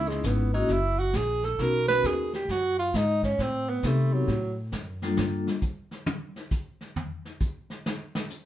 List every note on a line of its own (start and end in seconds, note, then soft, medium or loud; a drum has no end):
0.00 0.23 C#2 medium
0.00 0.48 B3 medium
0.00 0.48 C#4 medium
0.00 0.48 D#4 medium
0.00 0.10 E4 loud
0.00 0.48 E4 medium
0.00 0.48 G#4 medium
0.09 0.28 G#3 medium
0.09 snare soft
0.23 0.68 G#1 medium
0.23 0.53 B3 medium
0.23 kick soft
0.23 snare medium
0.23 hi-hat pedal medium
0.54 0.68 A#3 medium
0.54 0.68 C#4 medium
0.54 0.73 D#4 medium
0.54 0.68 E4 medium
0.54 0.68 F#4 medium
0.54 0.68 G#4 medium
0.68 1.12 F#1 medium
0.68 1.01 E4 medium
0.68 brush sweep soft
0.68 kick soft
0.68 snare soft
0.99 1.17 F#4 medium
1.13 1.57 A#1 medium
1.13 1.46 G#4 medium
1.13 kick soft
1.13 snare medium
1.13 hi-hat pedal medium
1.43 1.63 A4 medium
1.43 snare soft
1.59 2.02 B1 medium
1.59 2.27 B3 medium
1.59 2.27 C#4 medium
1.59 2.28 D#4 medium
1.59 2.28 F#4 medium
1.59 2.28 A#4 medium
1.59 1.88 A#4 medium
1.59 brush sweep medium
1.59 kick soft
1.59 snare soft
1.88 2.08 B4 loud
1.88 snare medium
2.04 2.47 D#2 loud
2.04 2.34 G#4 medium
2.04 kick soft
2.04 snare medium
2.04 hi-hat pedal medium
2.33 2.52 G4 medium
2.33 snare soft
2.48 2.92 F#2 medium
2.48 2.78 F#4 medium
2.48 brush sweep medium
2.48 kick soft
2.48 snare medium
2.79 2.98 F4 medium
2.93 3.37 G#2 medium
2.93 3.23 D#4 medium
2.93 kick soft
2.93 snare medium
2.93 hi-hat pedal medium
3.23 3.43 C#4 medium
3.23 kick soft
3.23 snare soft
3.38 3.82 A2 medium
3.38 3.71 C4 loud
3.38 brush sweep medium
3.38 kick soft
3.38 snare medium
3.69 3.88 B3 medium
3.83 4.27 C3 medium
3.83 4.15 A3 medium
3.83 4.28 B3 medium
3.83 4.28 C4 medium
3.83 4.29 D#4 medium
3.83 4.29 G4 medium
3.83 4.29 A4 medium
3.83 kick soft
3.83 snare medium
3.83 hi-hat pedal medium
4.13 4.58 F#3 medium
4.28 4.71 A2 medium
4.28 brush sweep soft
4.28 kick soft
4.28 snare soft
4.72 5.16 F#2 medium
4.72 kick soft
4.72 snare medium
4.72 hi-hat pedal soft
5.02 5.47 G3 medium
5.02 5.47 A#3 medium
5.02 5.47 D4 medium
5.02 5.47 F4 medium
5.02 5.47 A4 medium
5.02 snare soft
5.17 5.46 G2 medium
5.17 snare loud
5.47 snare soft
5.61 kick medium
5.61 hi-hat pedal medium
5.91 snare soft
6.06 high tom loud
6.36 snare soft
6.51 kick medium
6.51 hi-hat pedal medium
6.81 snare soft
6.96 floor tom medium
7.25 snare soft
7.40 kick medium
7.40 hi-hat pedal medium
7.70 snare soft
7.86 snare loud
8.15 snare loud
8.30 hi-hat pedal medium